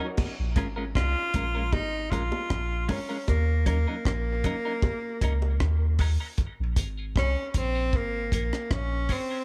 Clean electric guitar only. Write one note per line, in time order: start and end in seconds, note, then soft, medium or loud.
0.00 0.07 F#3 soft
0.00 0.07 C#4 medium
0.57 0.66 G#3 medium
0.57 0.66 C#4 medium
0.57 0.67 F4 medium
0.57 0.67 A#4 medium
0.76 0.84 G#3 medium
0.76 0.84 C#4 medium
0.76 0.84 F4 medium
0.76 0.83 A#4 medium
1.34 1.44 G#3 medium
1.34 1.44 C#4 medium
1.34 1.45 F4 medium
1.34 1.45 A#4 loud
1.55 1.62 G#3 soft
1.55 1.62 C#4 medium
1.55 1.62 F4 medium
1.55 1.61 A#4 medium
2.12 2.21 G#3 medium
2.12 2.22 C#4 medium
2.12 2.22 F4 medium
2.12 2.22 A#4 medium
2.89 2.99 G#3 medium
2.89 2.99 C#4 medium
2.89 3.00 F4 medium
2.89 3.00 A#4 medium
3.09 3.17 G#3 medium
3.09 3.17 C#4 medium
3.09 3.16 F4 medium
3.09 3.16 A#4 medium
3.66 3.76 F#3 medium
3.66 3.76 C#4 medium
3.66 3.77 D#4 medium
3.66 3.77 A#4 medium
3.87 3.95 F#3 medium
3.87 3.95 C#4 medium
3.87 3.94 D#4 medium
3.87 3.94 A#4 medium
4.44 4.54 F#3 medium
4.44 4.55 C#4 medium
4.44 4.55 D#4 loud
4.44 4.55 A#4 medium
4.65 4.73 F#3 soft
4.65 4.73 C#4 medium
4.65 4.72 D#4 medium
4.65 4.72 A#4 medium
5.22 5.32 F#3 medium
5.22 5.32 C#4 medium
5.22 5.33 D#4 loud
5.22 5.33 A#4 loud
6.00 6.10 F#3 medium
6.00 6.10 C#4 medium
6.00 6.10 D#4 medium
6.00 6.10 A#4 medium
6.20 6.28 F#3 medium
6.20 6.27 C#4 medium
6.20 6.27 D#4 medium
6.20 6.27 A#4 medium
6.78 6.87 G#3 medium
6.78 6.87 C#4 medium
6.78 6.88 F4 medium
6.78 6.88 A#4 medium
6.98 7.05 G#3 medium
6.98 7.05 C#4 medium
6.98 7.05 F4 medium
6.98 7.04 A#4 medium
7.54 7.64 G#3 medium
7.54 7.64 C#4 medium
7.54 7.65 F4 medium
7.54 7.65 A#4 loud
7.75 7.83 G#3 medium
7.75 7.82 C#4 medium
7.75 7.82 F4 medium
7.75 7.82 A#4 medium
8.32 8.42 G#3 medium
8.32 8.42 C#4 medium
8.32 8.43 F4 medium
8.32 8.43 A#4 medium
9.09 9.19 G#3 medium
9.09 9.20 C#4 medium
9.09 9.20 F4 medium
9.09 9.20 A#4 medium
9.30 9.38 G#3 medium
9.30 9.38 C#4 medium
9.30 9.38 F4 medium
9.30 9.37 A#4 medium